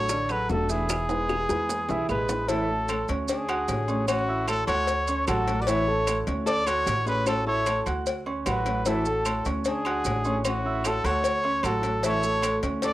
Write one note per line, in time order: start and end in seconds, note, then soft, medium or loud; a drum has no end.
0.00 0.46 A1 medium
0.00 0.31 A4 medium
0.00 0.33 C#5 loud
0.09 0.26 D3 medium
0.09 0.26 D4 medium
0.09 0.27 D5 medium
0.09 muted steel-string acoustic guitar stroke medium
0.09 high bongo medium
0.09 high timbale medium
0.09 maracas medium
0.29 0.62 F#3 medium
0.29 0.63 F#4 medium
0.29 0.50 G#4 medium
0.29 0.63 A4 medium
0.29 0.50 B4 loud
0.29 high timbale medium
0.29 claves medium
0.29 maracas soft
0.49 1.44 E1 medium
0.49 0.69 D3 medium
0.49 0.69 A3 medium
0.49 0.69 D4 medium
0.49 0.71 F#4 medium
0.49 0.68 F#4 medium
0.49 0.72 A4 medium
0.49 high bongo soft
0.49 low bongo medium
0.49 low timbale medium
0.49 maracas soft
0.69 1.02 E3 medium
0.69 0.90 A3 soft
0.69 0.89 D4 soft
0.69 1.02 E4 medium
0.69 2.10 E4 medium
0.69 0.89 F#4 soft
0.69 2.09 G#4 loud
0.69 1.03 E5 medium
0.69 high bongo soft
0.69 high timbale medium
0.69 maracas medium
0.89 1.09 B2 medium
0.89 1.09 E3 medium
0.89 1.09 G#3 medium
0.89 1.09 B3 medium
0.89 1.08 E4 medium
0.89 high bongo medium
0.89 high timbale medium
0.89 claves medium
0.89 maracas medium
1.09 1.42 G#3 medium
1.09 1.29 G#3 soft
1.09 1.29 B3 soft
1.09 1.29 E4 medium
1.09 1.43 G#4 medium
1.09 1.43 B4 medium
1.09 high bongo soft
1.09 high timbale loud
1.09 maracas soft
1.29 1.49 B2 medium
1.29 1.49 E3 medium
1.29 1.49 G#3 medium
1.29 1.50 B3 medium
1.29 1.49 E4 medium
1.29 high bongo medium
1.29 low timbale medium
1.29 claves medium
1.29 maracas soft
1.49 1.87 E2 medium
1.49 1.82 G#3 medium
1.49 1.69 G#3 soft
1.49 1.69 B3 soft
1.49 1.69 E4 soft
1.49 1.82 G#4 medium
1.49 1.83 B4 medium
1.49 high bongo medium
1.49 high timbale medium
1.49 maracas medium
1.69 muted steel-string acoustic guitar stroke medium
1.69 low timbale medium
1.69 maracas medium
1.89 2.08 B1 medium
1.89 2.06 E3 medium
1.89 2.06 E4 medium
1.89 2.06 E5 medium
1.89 low bongo medium
1.89 low timbale medium
1.89 maracas soft
2.09 3.03 A1 medium
2.09 2.28 B2 medium
2.09 2.28 E3 medium
2.09 2.42 G#3 medium
2.09 2.29 G#3 medium
2.09 2.29 B3 medium
2.09 2.28 E4 medium
2.09 2.42 G#4 medium
2.09 2.49 G#4 medium
2.09 2.42 B4 medium
2.09 2.50 B4 medium
2.09 low timbale medium
2.09 claves medium
2.09 maracas soft
2.29 2.49 G#3 soft
2.29 2.49 B3 soft
2.29 2.48 E4 soft
2.29 low bongo medium
2.29 low timbale medium
2.29 maracas medium
2.48 2.65 E3 medium
2.48 2.87 E3 medium
2.48 2.88 A3 medium
2.48 2.88 C#4 medium
2.48 2.65 E4 medium
2.48 3.09 F#4 medium
2.48 2.89 F#4 medium
2.48 3.09 A4 loud
2.48 2.66 E5 medium
2.48 cowbell loud
2.48 low agogo medium
2.48 maracas medium
2.69 3.01 A3 medium
2.69 3.02 A4 medium
2.69 3.02 A5 medium
2.88 3.28 E3 medium
2.88 3.28 A3 medium
2.88 3.28 C#4 soft
2.88 3.28 F#4 medium
2.88 cowbell medium
2.88 low timbale medium
2.88 low agogo loud
2.88 claves medium
2.88 maracas medium
3.08 3.65 D2 medium
3.08 3.41 C#4 medium
3.08 3.42 C#5 medium
3.08 3.42 C#6 medium
3.08 cowbell medium
3.08 maracas soft
3.28 4.04 D4 medium
3.28 4.05 G#4 medium
3.28 muted steel-string acoustic guitar stroke medium
3.28 cowbell loud
3.28 low agogo medium
3.28 maracas medium
3.48 3.81 F#4 medium
3.48 3.82 F#5 medium
3.48 3.82 F#6 medium
3.48 cowbell medium
3.48 low agogo loud
3.48 claves medium
3.68 4.62 A1 loud
3.68 3.87 D3 medium
3.68 3.88 A3 medium
3.68 3.88 C#4 medium
3.68 3.88 F#4 medium
3.68 cowbell medium
3.68 low timbale medium
3.68 maracas medium
3.88 4.08 A3 medium
3.88 4.21 C#4 medium
3.88 4.08 C#4 medium
3.88 4.08 F#4 medium
3.88 4.21 C#5 medium
3.88 4.22 C#6 medium
3.88 low agogo medium
3.88 maracas soft
4.08 4.47 E3 medium
4.08 4.48 A3 medium
4.08 4.45 C#4 medium
4.08 4.48 C#4 medium
4.08 4.45 F#4 medium
4.08 4.48 F#4 medium
4.08 cowbell loud
4.08 low agogo loud
4.08 claves medium
4.08 maracas medium
4.28 4.44 E4 medium
4.28 4.45 E5 medium
4.28 4.45 E6 medium
4.47 4.87 E3 medium
4.47 4.65 A3 medium
4.47 4.87 A3 medium
4.47 4.88 C#4 medium
4.47 4.66 F#4 medium
4.47 4.88 F#4 medium
4.47 4.67 A4 loud
4.47 4.65 A4 medium
4.47 4.65 A5 medium
4.47 cowbell medium
4.47 low timbale medium
4.47 low agogo loud
4.47 claves medium
4.47 maracas medium
4.67 5.23 D2 medium
4.67 5.01 F#4 medium
4.67 5.23 A4 medium
4.67 5.23 C#5 loud
4.67 5.01 F#5 medium
4.67 5.01 F#6 medium
4.67 cowbell medium
4.67 low agogo medium
4.67 maracas soft
4.87 muted steel-string acoustic guitar stroke medium
4.87 cowbell loud
4.87 maracas medium
5.07 5.24 C#4 medium
5.07 5.25 C#5 medium
5.07 5.25 C#6 medium
5.07 low agogo medium
5.07 maracas medium
5.27 6.21 A1 loud
5.27 5.47 D3 medium
5.27 5.60 F#3 medium
5.27 5.47 A3 medium
5.27 5.47 C#4 medium
5.27 5.62 F#4 medium
5.27 5.61 F#4 medium
5.27 5.46 F#4 medium
5.27 5.63 A4 loud
5.27 5.61 F#5 medium
5.27 cowbell medium
5.27 low timbale medium
5.27 low agogo loud
5.27 claves medium
5.27 maracas medium
5.47 5.67 A3 medium
5.47 5.67 C#4 medium
5.47 5.66 F#4 medium
5.47 cowbell medium
5.47 maracas soft
5.61 5.67 B4 medium
5.61 5.69 D5 medium
5.67 6.06 E3 medium
5.67 5.84 E3 loud
5.67 6.06 A3 medium
5.67 6.07 C#4 medium
5.67 5.84 E4 medium
5.67 6.07 F#4 medium
5.67 6.20 A4 medium
5.67 6.20 C#5 loud
5.67 5.84 E5 medium
5.67 cowbell loud
5.67 low agogo medium
5.67 maracas medium
5.88 6.20 A3 medium
5.88 6.20 A4 medium
5.88 6.21 A5 medium
6.07 6.46 E3 medium
6.07 6.46 A3 medium
6.07 6.46 C#4 medium
6.07 6.47 F#4 medium
6.07 cowbell medium
6.07 low timbale medium
6.07 low agogo loud
6.07 claves medium
6.07 maracas medium
6.27 6.83 D2 loud
6.27 6.60 C#4 medium
6.27 6.60 C#5 medium
6.27 6.60 C#6 medium
6.27 cowbell medium
6.27 maracas soft
6.46 6.65 A4 loud
6.46 6.69 D5 loud
6.46 muted steel-string acoustic guitar stroke medium
6.46 cowbell loud
6.46 low agogo medium
6.46 maracas medium
6.67 7.00 F#4 medium
6.67 7.06 A4 medium
6.67 7.07 C#5 loud
6.67 7.00 F#5 medium
6.67 7.00 F#6 medium
6.67 cowbell medium
6.67 low agogo loud
6.67 claves medium
6.67 maracas medium
6.86 7.80 A1 loud
6.86 7.06 D3 medium
6.86 7.06 A3 medium
6.86 7.06 C#4 medium
6.86 7.05 F#4 medium
6.86 cowbell medium
6.86 low timbale medium
6.86 maracas medium
7.06 7.26 A3 medium
7.06 7.39 C#4 medium
7.06 7.26 C#4 medium
7.06 7.25 F#4 medium
7.06 7.25 G#4 medium
7.06 7.26 B4 loud
7.06 7.40 C#5 medium
7.06 7.40 C#6 medium
7.06 low agogo medium
7.06 maracas soft
7.26 7.65 E3 medium
7.26 7.66 A3 medium
7.26 7.66 C#4 medium
7.26 7.45 F#4 medium
7.26 7.66 F#4 medium
7.26 7.46 A4 loud
7.26 cowbell loud
7.26 low agogo loud
7.26 claves medium
7.26 maracas medium
7.47 7.63 E4 medium
7.47 7.83 A4 medium
7.47 7.84 C#5 loud
7.47 7.63 E5 medium
7.47 7.63 E6 medium
7.66 8.05 E3 medium
7.66 7.83 A3 medium
7.66 8.06 A3 medium
7.66 8.06 C#4 medium
7.66 8.06 F#4 medium
7.66 7.83 A4 medium
7.66 7.83 A5 medium
7.66 cowbell medium
7.66 low timbale medium
7.66 low agogo loud
7.66 claves medium
7.66 maracas medium
7.86 8.42 D2 medium
7.86 8.19 F#4 medium
7.86 8.19 F#5 medium
7.86 8.19 F#6 medium
7.86 cowbell medium
7.86 low agogo medium
7.86 maracas soft
8.06 muted steel-string acoustic guitar stroke medium
8.06 cowbell loud
8.06 maracas medium
8.26 8.42 C#4 medium
8.26 8.43 C#5 medium
8.26 8.43 C#6 medium
8.26 low agogo medium
8.45 9.39 A1 medium
8.45 8.65 D3 medium
8.45 8.79 F#3 medium
8.45 8.65 A3 medium
8.45 8.65 C#4 medium
8.45 8.79 F#4 medium
8.45 8.83 F#4 medium
8.45 8.64 F#4 medium
8.45 8.89 B4 medium
8.45 8.79 F#5 medium
8.45 cowbell medium
8.45 low timbale medium
8.45 low agogo loud
8.45 claves medium
8.45 maracas medium
8.65 8.84 A3 medium
8.65 8.85 C#4 medium
8.65 8.84 F#4 medium
8.65 cowbell medium
8.65 maracas soft
8.85 9.23 E3 medium
8.85 9.02 E3 loud
8.85 9.24 A3 medium
8.85 9.25 C#4 medium
8.85 9.02 E4 medium
8.85 9.25 F#4 medium
8.85 9.46 F#4 medium
8.85 9.46 A4 loud
8.85 9.02 E5 medium
8.85 cowbell loud
8.85 low agogo medium
8.85 maracas medium
9.05 9.38 A3 medium
9.05 9.39 A4 medium
9.05 9.39 A5 medium
9.05 maracas medium
9.24 9.64 E3 medium
9.24 9.64 A3 medium
9.24 9.65 C#4 medium
9.24 9.65 F#4 medium
9.24 cowbell medium
9.24 low timbale medium
9.24 low agogo loud
9.24 claves medium
9.24 maracas medium
9.45 10.01 D2 medium
9.45 9.78 C#4 medium
9.45 9.78 C#5 medium
9.45 9.78 C#6 medium
9.45 cowbell medium
9.45 maracas soft
9.64 10.41 D4 medium
9.64 10.42 G#4 medium
9.64 muted steel-string acoustic guitar stroke medium
9.64 cowbell loud
9.64 low agogo medium
9.64 maracas medium
9.85 10.18 F#4 medium
9.85 10.18 F#5 medium
9.85 10.19 F#6 medium
9.85 cowbell medium
9.85 low agogo loud
9.85 claves medium
10.04 10.98 A1 loud
10.04 10.24 D3 medium
10.04 10.24 A3 medium
10.04 10.24 C#4 medium
10.04 10.23 F#4 medium
10.04 cowbell medium
10.04 low timbale medium
10.04 maracas medium
10.24 10.43 A3 medium
10.24 10.58 C#4 medium
10.24 10.44 C#4 medium
10.24 10.43 F#4 medium
10.24 10.58 C#5 medium
10.24 10.58 C#6 medium
10.24 low agogo medium
10.24 maracas soft
10.44 10.82 E3 medium
10.44 10.82 A3 medium
10.44 10.83 C#4 medium
10.44 10.82 C#4 medium
10.44 10.84 F#4 medium
10.44 10.89 F#4 medium
10.44 cowbell loud
10.44 low agogo loud
10.44 claves medium
10.44 maracas medium
10.65 10.81 E4 medium
10.65 10.81 E5 medium
10.65 10.82 E6 medium
10.83 11.22 E3 medium
10.83 11.22 A3 medium
10.83 11.01 A3 medium
10.83 11.23 C#4 medium
10.83 11.23 F#4 medium
10.83 11.01 A4 medium
10.83 11.02 A5 medium
10.83 cowbell medium
10.83 low timbale medium
10.83 low agogo loud
10.83 claves medium
10.83 maracas medium
10.87 11.06 F#4 medium
10.87 11.07 A4 loud
11.04 11.60 D2 loud
11.04 11.37 F#4 medium
11.04 11.66 A4 medium
11.04 11.66 C#5 loud
11.04 11.37 F#5 medium
11.04 11.38 F#6 medium
11.04 cowbell medium
11.04 low agogo medium
11.04 maracas soft
11.23 muted steel-string acoustic guitar stroke medium
11.23 cowbell loud
11.23 maracas medium
11.44 11.60 C#4 medium
11.44 11.60 C#5 medium
11.44 11.61 C#6 medium
11.44 low agogo medium
11.62 12.57 A1 loud
11.62 11.82 D3 soft
11.62 11.97 F#3 medium
11.62 11.82 A3 medium
11.62 11.82 C#4 medium
11.62 11.81 F#4 medium
11.62 11.97 F#4 medium
11.62 12.04 F#4 medium
11.62 12.04 A4 medium
11.62 11.97 F#5 medium
11.62 cowbell medium
11.62 low timbale medium
11.62 low agogo loud
11.62 claves medium
11.62 maracas medium
11.82 12.02 A3 medium
11.82 12.02 C#4 medium
11.82 12.02 F#4 medium
11.82 cowbell medium
11.82 maracas soft
12.03 12.41 E3 medium
12.03 12.20 E3 medium
12.03 12.42 A3 medium
12.03 12.43 C#4 medium
12.03 12.20 E4 medium
12.03 12.43 F#4 medium
12.03 12.60 A4 medium
12.03 12.60 C#5 loud
12.03 12.20 E5 medium
12.03 cowbell loud
12.03 low agogo medium
12.03 maracas medium
12.23 12.56 A3 medium
12.23 12.56 A4 medium
12.23 12.56 A5 medium
12.23 maracas medium
12.42 12.81 E3 medium
12.42 12.82 A3 medium
12.42 12.82 C#4 medium
12.42 12.82 F#4 medium
12.42 cowbell medium
12.42 low timbale medium
12.42 low agogo loud
12.42 claves medium
12.42 maracas medium
12.63 12.93 D2 loud
12.63 12.93 C#4 medium
12.63 12.93 C#5 medium
12.63 12.93 C#6 medium
12.63 cowbell medium
12.63 maracas soft
12.82 12.93 A4 loud
12.82 12.93 D5 loud
12.82 muted steel-string acoustic guitar stroke medium
12.82 cowbell loud
12.82 low agogo medium
12.82 maracas medium